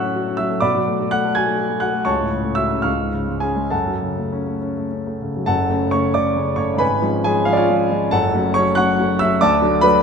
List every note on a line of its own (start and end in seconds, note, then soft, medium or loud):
0.00 0.60 A2 soft
0.00 0.38 F#3 soft
0.00 0.50 A3 soft
0.00 0.03 C#4 soft
0.00 0.23 C#4 soft
0.00 0.16 F#4 soft
0.00 0.67 C#5 medium
0.00 0.38 E5 medium
0.00 0.36 F#5 medium
0.00 0.67 A5 medium
0.00 0.67 C#6 medium
0.00 0.37 E6 medium
0.00 0.39 F#6 medium
0.16 0.35 F#4 soft
0.28 0.47 C#4 soft
0.37 0.59 F#3 soft
0.37 0.61 E5 medium
0.37 0.63 E6 medium
0.50 0.64 A3 soft
0.60 2.04 B2 medium
0.60 1.09 D5 medium
0.60 1.09 B5 medium
0.60 1.12 D6 medium
0.75 0.96 F#3 soft
0.87 1.08 A3 soft
1.00 1.20 F#4 soft
1.11 1.33 A3 soft
1.11 1.35 F#5 medium
1.11 1.36 F#6 medium
1.25 1.44 A4 soft
1.35 1.56 F#4 soft
1.35 1.80 G#5 medium
1.35 1.83 G#6 medium
1.47 1.67 A3 soft
1.58 1.79 F#4 soft
1.70 1.91 A3 soft
1.80 2.03 F#4 soft
1.80 2.06 F#5 medium
1.80 2.07 F#6 medium
1.93 2.08 A3 soft
2.05 2.82 C#2 medium
2.05 2.54 C#5 medium
2.05 2.54 A5 medium
2.05 2.57 C#6 medium
2.20 2.41 A2 soft
2.31 2.53 C#3 soft
2.44 2.66 A3 soft
2.55 2.79 F#4 soft
2.55 2.83 E5 medium
2.55 2.84 E6 medium
2.70 2.85 C#4 soft
2.82 3.69 C#2 medium
2.82 3.38 F5 medium
2.82 3.38 C#6 medium
2.82 3.41 F6 medium
3.01 3.23 G#2 soft
3.14 3.37 C#3 soft
3.29 3.52 G#3 soft
3.40 3.66 C#4 soft
3.40 3.70 G#4 soft
3.40 3.71 G#5 medium
3.56 3.72 G#3 soft
3.70 5.44 F#2 soft
3.70 4.58 A4 soft
3.70 4.58 F#5 soft
3.70 4.61 A5 medium
3.87 4.11 F#3 soft
4.03 4.27 C#3 soft
4.18 4.42 A3 soft
4.32 4.56 C#4 soft
4.47 4.71 A3 soft
4.61 4.86 C#4 soft
4.77 5.01 A3 soft
4.92 5.16 C#4 soft
5.07 5.31 A3 soft
5.22 5.44 C#3 soft
5.36 5.49 F#3 soft
5.46 5.70 F#1 soft
5.46 5.70 F#2 medium
5.46 5.90 A4 medium
5.46 5.90 F#5 medium
5.46 5.92 A5 medium
5.70 5.90 C#3 soft
5.70 5.91 A3 soft
5.70 5.91 C#4 soft
5.91 6.13 C#3 soft
5.91 6.13 A3 soft
5.91 6.13 C#4 medium
5.91 6.13 C#5 medium
5.91 6.14 C#6 medium
6.14 6.35 C#3 soft
6.14 6.35 A3 soft
6.14 6.35 C#4 soft
6.14 6.56 D5 medium
6.14 6.59 D6 medium
6.36 6.56 C#3 soft
6.36 6.56 A3 soft
6.36 6.57 C#4 soft
6.56 6.78 C#3 soft
6.56 6.79 A3 soft
6.56 6.79 C#4 soft
6.56 6.79 C#5 medium
6.56 6.80 C#6 medium
6.74 6.99 G#2 medium
6.78 7.02 G#1 medium
6.78 7.21 B4 medium
6.78 7.22 G#5 medium
6.78 7.24 B5 medium
7.02 7.22 F3 soft
7.02 7.23 G#3 soft
7.02 7.23 C#4 soft
7.24 7.44 F3 soft
7.24 7.45 G#3 soft
7.24 7.46 C#4 medium
7.24 7.46 G#4 medium
7.24 7.47 G#5 medium
7.45 7.67 F3 soft
7.45 7.67 G#3 soft
7.45 7.67 C#4 medium
7.45 7.53 F5 medium
7.53 7.59 D5 medium
7.57 8.08 F4 medium
7.57 8.08 C#5 medium
7.57 8.11 F5 medium
7.69 7.89 F3 soft
7.69 7.89 G#3 soft
7.69 7.89 C#4 soft
7.91 8.10 F3 soft
7.91 8.11 G#3 soft
7.91 8.11 C#4 soft
8.11 8.33 F#1 medium
8.11 8.33 F#2 medium
8.11 8.52 A4 medium
8.11 8.52 F#5 medium
8.11 8.54 A5 medium
8.34 8.53 F#3 medium
8.34 8.53 A3 soft
8.34 8.54 C#4 medium
8.54 8.75 F#3 medium
8.54 8.75 A3 medium
8.54 8.75 C#4 medium
8.54 8.76 C#5 medium
8.54 8.76 C#6 loud
8.75 8.97 F#3 medium
8.75 8.97 A3 medium
8.75 8.97 C#4 medium
8.75 9.18 F#5 medium
8.75 9.18 C#6 medium
8.75 9.20 F#6 loud
9.00 9.19 F#3 soft
9.00 9.19 A3 soft
9.00 9.20 C#4 soft
9.19 9.40 F#3 soft
9.19 9.40 A3 soft
9.19 9.40 C#4 medium
9.19 9.40 E5 medium
9.19 9.41 E6 loud
9.41 9.62 D2 medium
9.41 9.81 D5 medium
9.41 9.81 A5 medium
9.41 9.83 D6 loud
9.62 9.81 F#3 medium
9.62 9.81 A3 medium
9.62 9.81 D4 medium
9.81 10.02 F#3 medium
9.81 10.02 A3 medium
9.81 10.02 D4 medium
9.81 10.03 B4 medium
9.81 10.03 B5 loud